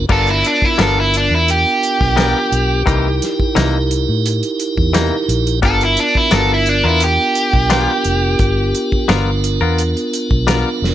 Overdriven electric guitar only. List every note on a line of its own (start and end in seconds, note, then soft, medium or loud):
0.12 0.28 A4 medium
0.30 0.45 E4 medium
0.46 0.65 D4 medium
0.65 0.80 E4 medium
0.82 0.98 A4 medium
1.00 1.15 E4 medium
1.17 1.33 D4 medium
1.34 1.49 E4 medium
1.51 3.53 G4 medium
5.65 5.82 A4 loud
5.84 5.99 E4 medium
6.00 6.16 D4 medium
6.17 6.33 E4 medium
6.35 6.51 A4 medium
6.54 6.69 E4 medium
6.69 6.85 D4 medium
6.87 7.02 E4 medium
7.04 9.06 G4 loud